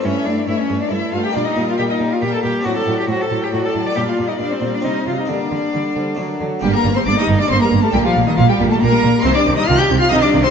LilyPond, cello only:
\new Staff \with { instrumentName = "Cello" } { \time 3/4 \key a \phrygian \tempo 4 = 137 cis'8 d'8 e'16 cis'8 d'16 e'8 f'16 g'16 | \key g \minor d'16 ees'8 f'16 g'16 ees'8 f'16 g'16 a'16 g'8 | fis'16 a'8 g'16 fis'16 a'8 g'16 fis'16 a'8 d''16 | g'16 f'8 ees'16 d'16 c'8 d'16 ees'8 f'16 ees'16 |
d'2~ d'8 r8 | g16 bes8 c'16 d'16 ees'8 d'16 c'16 bes8 a16 | g16 f8 ees16 f16 g8 a16 bes4 | c'16 d'8 ees'16 f'16 g'8 f'16 ees'16 d'8 c'16 | }